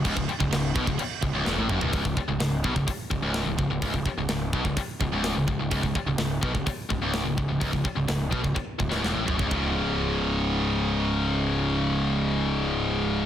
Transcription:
0.05 picked electric bass C#1, distorted electric guitar C#2, kick, crash
0.16 picked electric bass C#1, distorted electric guitar C#2, kick
0.28 muted picked electric bass stroke, muted distorted electric guitar stroke, crash
0.40 picked electric bass C#1, distorted electric guitar C#2, kick
0.52 picked electric bass C#1, distorted electric guitar C#2, snare, crash
0.75 picked electric bass B1, distorted electric guitar B2, kick, crash
0.87 picked electric bass C#1, distorted electric guitar C#2, kick
0.99 muted picked electric bass stroke, muted distorted electric guitar stroke, crash
1.22 picked electric bass C#1, distorted electric guitar C#2, kick, crash
1.34 picked electric bass C#1, distorted electric guitar C#2
1.46 picked electric bass E1, distorted electric guitar E2, snare
1.58 picked electric bass A1, distorted electric guitar A2
1.69 picked electric bass F#1, distorted electric guitar F#2, mid tom
1.81 picked electric bass C#1, distorted electric guitar C#2, floor tom
1.93 picked electric bass C#1, distorted electric guitar C#2, kick, open hi-hat
2.05 picked electric bass C#1, distorted electric guitar C#2, kick
2.17 muted picked electric bass stroke, muted distorted electric guitar stroke, kick
2.29 picked electric bass C#1, distorted electric guitar C#2
2.40 picked electric bass C#1, distorted electric guitar C#2, snare, open hi-hat
2.64 picked electric bass B1, distorted electric guitar B2, kick
2.76 picked electric bass C#1, distorted electric guitar C#2, kick
2.87 muted distorted electric guitar stroke, muted picked electric bass stroke, kick, open hi-hat
3.11 picked electric bass C#1, distorted electric guitar C#2, kick
3.23 picked electric bass C#1, distorted electric guitar C#2
3.34 snare, open hi-hat
3.46 picked electric bass C#1, distorted electric guitar C#2
3.58 picked electric bass C#1, distorted electric guitar C#2, kick
3.70 picked electric bass C#1, distorted electric guitar C#2
3.82 picked electric bass C#1, distorted electric guitar C#2, kick, open hi-hat
3.94 picked electric bass C#1, distorted electric guitar C#2, kick
4.06 muted picked electric bass stroke, muted distorted electric guitar stroke, kick
4.18 picked electric bass C#1, distorted electric guitar C#2
4.29 picked electric bass C#1, distorted electric guitar C#2, snare, open hi-hat
4.53 picked electric bass B1, distorted electric guitar B2, kick
4.65 picked electric bass C#1, distorted electric guitar C#2, kick
4.77 muted picked electric bass stroke, muted distorted electric guitar stroke, kick, open hi-hat
5.00 picked electric bass C#1, distorted electric guitar C#2, kick
5.12 picked electric bass C#1, distorted electric guitar C#2
5.24 snare, open hi-hat
5.34 picked electric bass C#1, distorted electric guitar C#2
5.48 picked electric bass C#1, distorted electric guitar C#2, kick
5.58 picked electric bass C#1, distorted electric guitar C#2
5.71 picked electric bass C#1, distorted electric guitar C#2, kick, open hi-hat
5.83 picked electric bass C#1, distorted electric guitar C#2, kick
5.95 muted picked electric bass stroke, muted distorted electric guitar stroke, kick
6.06 picked electric bass C#1, distorted electric guitar C#2
6.18 picked electric bass C#1, distorted electric guitar C#2, snare, open hi-hat
6.42 picked electric bass B1, distorted electric guitar B2, kick
6.54 picked electric bass C#1, distorted electric guitar C#2, kick
6.66 muted distorted electric guitar stroke, muted picked electric bass stroke, kick, open hi-hat
6.90 picked electric bass C#1, distorted electric guitar C#2, kick
7.01 picked electric bass C#1, distorted electric guitar C#2
7.14 snare, open hi-hat
7.25 picked electric bass C#1, distorted electric guitar C#2
7.37 picked electric bass C#1, distorted electric guitar C#2, kick
7.48 picked electric bass C#1, distorted electric guitar C#2
7.60 picked electric bass C#1, distorted electric guitar C#2, kick, open hi-hat
7.72 picked electric bass C#1, distorted electric guitar C#2, kick
7.84 muted distorted electric guitar stroke, muted picked electric bass stroke, kick
7.96 picked electric bass C#1, distorted electric guitar C#2
8.08 picked electric bass C#1, distorted electric guitar C#2, snare, open hi-hat
8.31 picked electric bass B1, distorted electric guitar B2, kick
8.43 picked electric bass C#1, distorted electric guitar C#2, kick
8.55 muted distorted electric guitar stroke, muted picked electric bass stroke, kick
8.79 picked electric bass C#1, distorted electric guitar C#2, kick
8.90 picked electric bass C#1, distorted electric guitar C#2, snare
9.02 picked electric bass E1, distorted electric guitar E2, snare
9.13 picked electric bass A1, distorted electric guitar A2
9.25 picked electric bass F#1, distorted electric guitar F#2, floor tom
9.38 picked electric bass C#1, distorted electric guitar C#2, kick
9.49 picked electric bass C#1, distorted electric guitar C#2 G#2, kick, floor tom
9.53 distorted electric guitar C#3

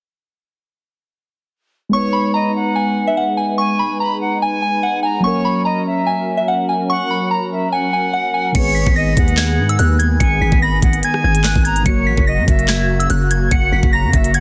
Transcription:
1.89 synth keys G#3 B3, analog synth pad G#3 D#4 B4, flute C#5, synth bell C#6
1.94 synth keys D#4 B4
2.13 synth bell B5
2.34 flute D#5, synth bell A#5
2.55 flute F#5
2.76 synth bell G#5
3.07 synth bell E5
3.17 synth bell F#5
3.37 synth bell G#5
3.58 flute G#5, synth bell C#6
3.79 synth bell B5
4.00 synth bell A#5, flute B5
4.21 flute F#5
4.41 flute G#5, synth bell G#5
4.62 synth bell G#5
4.83 synth bell F#5
5.03 synth bell G#5, flute A#5
5.20 synth keys F#3 A#3, analog synth pad F#3 C#4 A#4, flute C#5, synth bell C#6
5.25 synth keys C#4 A#4
5.45 synth bell B5
5.65 flute D#5, synth bell A#5
5.86 flute E5
6.07 synth bell G#5
6.37 synth bell E5
6.48 synth bell F#5
6.69 synth bell G#5
6.89 flute F#5, synth bell C#6
7.11 synth bell B5
7.31 flute A#5, synth bell A#5
7.51 flute E5
7.72 flute F#5, synth bell G#5
7.93 synth bell G#5
8.13 synth bell F#5
8.34 synth bell G#5
8.52 808-style bass G#1, synth keys D#3 G#3 B3, analog synth pad D#3 B3 G#4, flute C#5, synth bell C#7, kick, closed hi-hat, crash
8.57 synth keys G#4 B4
8.75 synth bell B6
8.87 808-style bass G#1, kick
8.96 flute D#5, synth bell A#6
9.17 808-style bass D#2, flute F#5, kick, closed hi-hat
9.28 closed hi-hat
9.37 synth bell G#6, snare, clap, closed hi-hat
9.58 808-style bass G#2
9.69 synth bell E6, closed hi-hat
9.79 808-style bass D#2, synth bell F#6, closed hi-hat
9.99 synth bell G#6, closed hi-hat
10.20 808-style bass G#1, flute G#5, synth bell C#7, kick, closed hi-hat
10.41 808-style bass G#1, synth bell B6
10.52 808-style bass G#1, kick
10.62 flute B5, synth bell A#6
10.82 808-style bass G#1, flute F#5, kick, closed hi-hat
10.93 closed hi-hat
11.03 flute G#5, synth bell G#6, closed hi-hat
11.14 cross-stick
11.24 808-style bass G#1, synth bell G#6
11.35 closed hi-hat
11.44 synth bell F#6, snare, clap, closed hi-hat
11.55 808-style bass G#1, kick
11.65 flute A#5, synth bell G#6, closed hi-hat
11.76 closed hi-hat
11.83 808-style bass F#1, synth keys C#3 F#3 A#3, analog synth pad C#3 A#3 F#4, flute C#5, synth bell C#7, kick, closed hi-hat
11.88 synth keys F#4 A#4
12.07 808-style bass A#1, synth bell B6
12.17 808-style bass F#1, kick
12.27 flute D#5, synth bell A#6
12.38 808-style bass F#2
12.48 808-style bass F#1, flute E5, kick, closed hi-hat
12.59 closed hi-hat
12.68 synth bell G#6, snare, clap, closed hi-hat
12.99 synth bell E6, closed hi-hat
13.10 808-style bass F#1, synth bell F#6, closed hi-hat
13.31 synth bell G#6, closed hi-hat
13.51 808-style bass F#1, flute F#5, synth bell C#7, kick, closed hi-hat
13.72 808-style bass F#1, synth bell B6
13.83 808-style bass F#1, kick
13.93 flute A#5, synth bell A#6
14.04 808-style bass F#2
14.13 808-style bass F#1, flute E5, kick, closed hi-hat
14.24 closed hi-hat
14.34 flute F#5, synth bell G#6, closed hi-hat

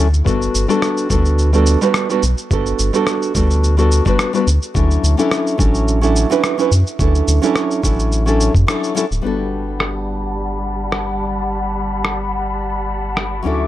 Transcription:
Already playing: analog synth bass D2
0.14 shaker
0.24 analog synth bass G1, nylon-string guitar G3 B3 D4 F#4 A4, kick, shaker
0.42 shaker
0.55 analog synth bass G1, shaker
0.68 nylon-string guitar G3 B3 D4 F#4 A4, shaker
0.82 cross-stick, shaker
0.97 shaker
1.09 analog synth bass D2, nylon-string guitar G3 B3 D4 F#4 A4, kick, shaker
1.25 shaker
1.39 shaker
1.53 nylon-string guitar G3 B3 D4 F#4 A4, shaker
1.66 shaker
1.81 nylon-string guitar G3 B3 D4 F#4 B4, shaker
1.94 cross-stick, shaker
2.09 nylon-string guitar G3 B3 D4 F#4 B4, shaker
2.23 analog synth bass B1, shaker
2.38 shaker
2.51 analog synth bass G1, nylon-string guitar G3 B3 D4 F#4 A4, kick, shaker
2.66 shaker
2.79 analog synth bass G1, shaker
2.93 nylon-string guitar G3 B3 D4 F#4 A4, shaker
3.07 cross-stick, shaker
3.22 shaker
3.34 analog synth bass D2, nylon-string guitar G3 B3 D4 F#4 A4, kick, shaker
3.51 shaker
3.64 shaker
3.77 nylon-string guitar G3 B3 D4 F#4 A4, shaker
3.92 shaker
4.05 nylon-string guitar G3 B3 D4 F#4 B4, kick, shaker
4.19 cross-stick, shaker
4.33 nylon-string guitar G3 B3 D4 F#4 B4, shaker
4.47 analog synth bass D2, shaker
4.62 shaker
4.74 analog synth bass D2, nylon-string guitar F#3 C#4 D4 E4 A4, kick, shaker
4.91 shaker
5.03 analog synth bass D2, shaker
5.17 nylon-string guitar F#3 C#4 D4 E4 A4, shaker
5.31 cross-stick, shaker
5.47 shaker
5.58 analog synth bass A1, nylon-string guitar F#3 C#4 D4 E4 A4, kick, shaker
5.75 shaker
5.88 shaker
6.01 nylon-string guitar F#3 C#4 D4 E4 A4, shaker
6.16 shaker
6.30 nylon-string guitar F#3 C#4 D4 E4 B4, shaker
6.44 cross-stick, shaker
6.58 nylon-string guitar F#3 C#4 D4 E4 B4, shaker
6.71 analog synth bass F#2, shaker
6.87 shaker
6.99 analog synth bass D2, nylon-string guitar F#3 C#4 D4 E4 A4, kick, shaker
7.15 shaker
7.28 analog synth bass D2, shaker
7.42 nylon-string guitar F#3 C#4 D4 E4 A4, shaker
7.56 cross-stick, shaker
7.71 shaker
7.83 analog synth bass A1, nylon-string guitar F#3 C#4 D4 E4 A4, kick, shaker
7.99 shaker
8.12 shaker
8.26 nylon-string guitar F#3 C#4 D4 E4 A4, shaker
8.41 shaker
8.54 analog synth bass F#2, kick, shaker
8.67 nylon-string guitar F#3 C#4 D4 E4 A4, cross-stick, shaker
8.84 shaker
8.95 nylon-string guitar F#3 C#4 D4 E4 A4, shaker
9.11 analog synth bass D1, shaker
9.22 analog synth bass G1, nylon-string guitar G3 B3 D4 F#4, string section G3 F#5 A5 B5
9.26 nylon-string guitar A4
9.80 cross-stick
10.92 cross-stick
12.05 cross-stick
13.17 cross-stick
13.43 analog synth bass D2, nylon-string guitar F#3 C#4 D4 E4, string section F#4 E5 C#6 D6
13.47 nylon-string guitar A4

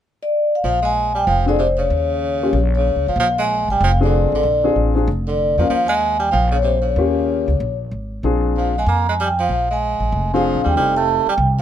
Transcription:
0.23 vibraphone D5
0.55 vibraphone F5
0.64 upright bass A#1, tenor saxophone F3, vibraphone F5
0.82 tenor saxophone G#3, vibraphone G#5
1.15 tenor saxophone G3, vibraphone G5
1.26 upright bass F1, tenor saxophone F3, vibraphone F5
1.46 tenor saxophone D3, grand piano C4 D4 F4 G#4, vibraphone D5
1.59 tenor saxophone C3, vibraphone C5
1.78 tenor saxophone C#3, vibraphone C#5
1.90 upright bass D#2
2.42 grand piano A#3 C#4 F4 G4
2.53 upright bass A#1
2.75 tenor saxophone C#3, vibraphone C#5
2.96 upright bass C#2
3.07 upright bass G#1, tenor saxophone F3, vibraphone F5
3.16 upright bass A#1, tenor saxophone F3
3.21 vibraphone F5
3.39 tenor saxophone G#3, vibraphone G#5
3.68 upright bass G#1, tenor saxophone G3, vibraphone G5
3.81 upright bass F1, tenor saxophone F3, vibraphone F5
4.00 grand piano C4 D4 F4 G#4, vibraphone D5
4.05 tenor saxophone D3
4.32 upright bass G#1, tenor saxophone D3, vibraphone D5
4.43 upright bass A#1
4.64 grand piano C4 D4 F4 G#4
4.76 upright bass A1
4.95 grand piano C4 D4 F4 G#4
5.08 upright bass F1
5.27 tenor saxophone D3, vibraphone D5
5.58 upright bass E2, tenor saxophone F3, grand piano A#3 C#4 F4 A#4, vibraphone F5
5.70 upright bass D#2, tenor saxophone F3, vibraphone F5
5.88 tenor saxophone G#3, vibraphone G#5
6.19 tenor saxophone G3, vibraphone G5
6.31 upright bass A#1, tenor saxophone F3, vibraphone F5
6.52 tenor saxophone C#3, vibraphone C#5
6.62 tenor saxophone C3, vibraphone C5
6.82 tenor saxophone C#3, vibraphone C#5
6.96 upright bass D#2, grand piano A#3 C#4 F4 G4
7.48 upright bass C#2
7.60 upright bass A#1
7.91 upright bass G#1
8.23 upright bass A#1, grand piano C4 D4 F4 G#4
8.57 tenor saxophone F3, vibraphone F5
8.78 tenor saxophone G#3, vibraphone G#5
8.86 upright bass F2, tenor saxophone A#3, vibraphone A#5
9.09 tenor saxophone G#3, vibraphone G#5
9.20 tenor saxophone G3, vibraphone G5
9.39 tenor saxophone F3, vibraphone F5
9.49 upright bass A#1
9.71 tenor saxophone G#3, vibraphone G#5
10.00 upright bass A1
10.12 upright bass F1
10.34 tenor saxophone F3, grand piano C4 D4 F4 G#4, vibraphone F5
10.55 upright bass A#1
10.64 upright bass D#2, tenor saxophone G3, vibraphone G5
10.76 upright bass F1, tenor saxophone G3, grand piano C4 D#4 G4 A4, vibraphone G5
10.97 tenor saxophone A3, vibraphone A5
11.26 tenor saxophone G3, vibraphone G5, muted upright bass stroke
11.38 upright bass C2

